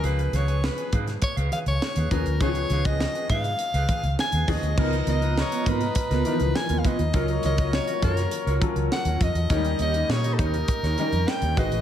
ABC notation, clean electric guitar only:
X:1
M:4/4
L:1/16
Q:1/4=102
K:C#mix
V:1 name="Clean electric guitar"
[GBe] z [GBe] [GBg] z [GBg] [GBe] z2 [GBe] [GBg] z2 [GBe] [GBg] z | [GBe] z [GBe] [GBg] z [GBg] [GBe] z2 [GBe] [GBg] z2 [GBe] [GBg] z | [B,EA] z [B,EA] [B,EB] z [B,EB] [B,EA] z2 [B,EA] [B,EB] z2 [B,EA] [B,EB] z | [EAc] z [EAc] [EAd] z [EAd] [EAc] z2 [EAc] z3 [EAc] [EAd] z |
[D=Gc] z [DGc] [DGd] z [DGd] [DGc] z2 [DGc] [DGd] z2 [DGc] [FBe] z |]